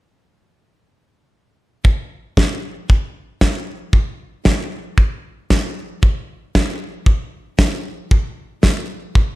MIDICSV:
0, 0, Header, 1, 2, 480
1, 0, Start_track
1, 0, Tempo, 521739
1, 1701, Time_signature, 4, 2, 24, 8
1, 8607, End_track
2, 0, Start_track
2, 0, Title_t, "Drums"
2, 1700, Note_on_c, 9, 36, 101
2, 1792, Note_off_c, 9, 36, 0
2, 2182, Note_on_c, 9, 36, 98
2, 2185, Note_on_c, 9, 38, 107
2, 2274, Note_off_c, 9, 36, 0
2, 2277, Note_off_c, 9, 38, 0
2, 2665, Note_on_c, 9, 36, 98
2, 2757, Note_off_c, 9, 36, 0
2, 3139, Note_on_c, 9, 38, 97
2, 3141, Note_on_c, 9, 36, 94
2, 3231, Note_off_c, 9, 38, 0
2, 3233, Note_off_c, 9, 36, 0
2, 3616, Note_on_c, 9, 36, 110
2, 3708, Note_off_c, 9, 36, 0
2, 4096, Note_on_c, 9, 38, 113
2, 4102, Note_on_c, 9, 36, 105
2, 4188, Note_off_c, 9, 38, 0
2, 4194, Note_off_c, 9, 36, 0
2, 4578, Note_on_c, 9, 36, 99
2, 4670, Note_off_c, 9, 36, 0
2, 5064, Note_on_c, 9, 38, 111
2, 5065, Note_on_c, 9, 36, 115
2, 5156, Note_off_c, 9, 38, 0
2, 5157, Note_off_c, 9, 36, 0
2, 5546, Note_on_c, 9, 36, 120
2, 5638, Note_off_c, 9, 36, 0
2, 6026, Note_on_c, 9, 38, 119
2, 6028, Note_on_c, 9, 36, 110
2, 6118, Note_off_c, 9, 38, 0
2, 6120, Note_off_c, 9, 36, 0
2, 6498, Note_on_c, 9, 36, 120
2, 6590, Note_off_c, 9, 36, 0
2, 6980, Note_on_c, 9, 36, 105
2, 6980, Note_on_c, 9, 38, 113
2, 7072, Note_off_c, 9, 36, 0
2, 7072, Note_off_c, 9, 38, 0
2, 7463, Note_on_c, 9, 36, 120
2, 7555, Note_off_c, 9, 36, 0
2, 7940, Note_on_c, 9, 38, 115
2, 7946, Note_on_c, 9, 36, 99
2, 8032, Note_off_c, 9, 38, 0
2, 8038, Note_off_c, 9, 36, 0
2, 8421, Note_on_c, 9, 36, 106
2, 8513, Note_off_c, 9, 36, 0
2, 8607, End_track
0, 0, End_of_file